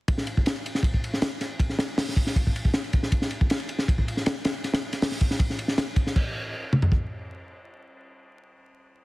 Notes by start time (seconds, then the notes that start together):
0.08 kick, ride
0.18 snare
0.27 ride
0.37 kick
0.46 snare, ride
0.56 ride
0.66 ride
0.75 snare
0.83 kick, ride
0.94 kick
1.04 ride
1.14 snare
1.22 snare, ride
1.41 snare, ride
1.59 kick, ride
1.69 snare
1.79 snare, ride
1.98 snare, open hi-hat
2.08 snare
2.16 kick, ride
2.27 snare
2.36 kick, ride
2.47 kick
2.56 ride
2.65 kick
2.74 snare, ride
2.84 ride
2.93 kick, ride
3.03 snare
3.12 kick, ride
3.22 snare
3.30 ride
3.41 kick
3.50 snare, ride
3.60 ride
3.69 ride
3.79 snare
3.88 kick, ride
3.98 kick
4.08 ride
4.17 snare
4.26 snare, ride
4.45 snare, ride
4.64 snare, ride
4.74 snare, ride
4.93 snare, ride
5.02 snare, open hi-hat
5.11 snare
5.21 kick, ride
5.31 snare
5.39 kick, ride
5.50 snare
5.59 ride
5.68 snare
5.78 snare, ride
5.96 kick, ride
6.07 snare
6.16 kick, crash
6.73 mid tom
6.82 floor tom
6.92 kick